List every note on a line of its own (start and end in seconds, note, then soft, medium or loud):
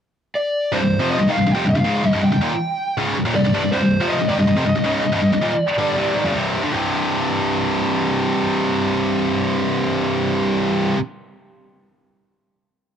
0.35 0.73 D5 medium
0.72 0.81 C2 medium
0.72 0.81 G2 loud
0.72 1.11 C5 loud
0.82 0.97 C2 medium
0.82 0.97 G2 medium
1.00 1.18 F2 medium
1.00 1.19 C3 loud
1.00 1.19 F3 loud
1.11 1.28 D#5 loud
1.19 1.28 C2 medium
1.19 1.29 G2 medium
1.29 1.37 G#2 medium
1.29 1.37 D#3 medium
1.29 1.51 F5 loud
1.37 1.45 C2 medium
1.37 1.45 G2 medium
1.46 1.54 C2 medium
1.46 1.55 G2 medium
1.51 1.64 F2 medium
1.51 1.69 G5 loud
1.55 1.65 C3 medium
1.65 1.74 C2 medium
1.65 1.74 G2 medium
1.69 2.20 F5 loud
1.75 1.84 C2 medium
1.75 1.85 G2 medium
1.84 2.03 C#2 loud
1.84 2.03 G#2 loud
1.84 2.04 C#3 medium
2.04 2.12 C2 medium
2.04 2.13 G2 medium
2.13 2.21 C2 loud
2.13 2.21 G2 loud
2.22 2.31 C2 medium
2.22 2.31 G2 medium
2.22 2.95 G5 loud
2.32 2.41 C2 medium
2.32 2.41 G2 medium
2.41 2.50 D#2 loud
2.41 2.51 A#2 medium
2.98 3.16 C#2 medium
2.98 3.16 G#2 loud
2.98 3.17 C#3 loud
3.16 3.25 C2 medium
3.16 3.26 G2 medium
3.25 3.34 D#2 medium
3.25 3.35 A#2 loud
3.35 3.43 C2 medium
3.35 3.44 G2 medium
3.35 3.70 D5 loud
3.44 3.53 C2 medium
3.44 3.53 G2 medium
3.54 3.62 C2 loud
3.54 3.63 G2 loud
3.64 3.71 C2 medium
3.64 3.72 G2 medium
3.72 3.81 C2 loud
3.72 3.81 G2 loud
3.72 4.09 C5 loud
3.82 3.97 C2 medium
3.82 3.97 G2 medium
4.01 4.19 F2 medium
4.01 4.20 C3 medium
4.01 4.20 F3 loud
4.09 4.27 D#5 loud
4.20 4.29 C2 medium
4.20 4.30 G2 medium
4.29 4.38 G#2 medium
4.29 4.39 D#3 loud
4.29 5.58 D#5 loud
4.39 4.46 C2 medium
4.39 4.46 G2 medium
4.47 4.56 C2 medium
4.47 4.57 G2 medium
4.56 4.65 F2 medium
4.56 4.66 C3 medium
4.66 4.74 C2 medium
4.66 4.74 G2 medium
4.75 4.84 C2 medium
4.75 4.84 G2 medium
4.84 5.03 C#2 medium
4.84 5.03 G#2 loud
4.84 5.04 C#3 loud
5.03 5.11 C2 medium
5.03 5.12 G2 medium
5.12 5.20 C2 medium
5.12 5.21 G2 loud
5.22 5.31 C2 medium
5.22 5.32 G2 medium
5.32 5.41 C2 medium
5.32 5.41 G2 medium
5.41 5.50 D#2 medium
5.41 5.51 A#2 loud
5.58 6.32 D5 loud
5.78 5.96 G2 medium
5.78 5.97 D3 medium
5.78 5.97 G3 loud
5.96 6.14 C2 medium
5.96 6.16 G2 loud
5.96 6.16 C3 loud
6.15 6.24 G#2 medium
6.15 6.25 D#3 medium
6.25 6.34 F#2 medium
6.25 6.35 C#3 medium
6.35 6.62 C2 medium
6.35 6.62 G2 medium
6.35 6.63 C3 loud
6.63 6.70 G2 loud
6.63 6.73 D3 loud
6.71 10.94 C2 medium
6.71 10.97 G2 loud
6.75 10.99 C3 loud